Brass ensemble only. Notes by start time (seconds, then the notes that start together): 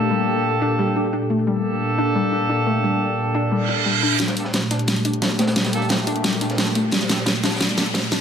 Already playing: A#3 D4 G4 A4
1.47 A#3 D4 G4 A4
4.37 A#3 D4 G4 A4
5.73 A#3 D4 G4 A4
7.09 A#3 D4 G4 A4
7.78 A#3 D4 G4 A4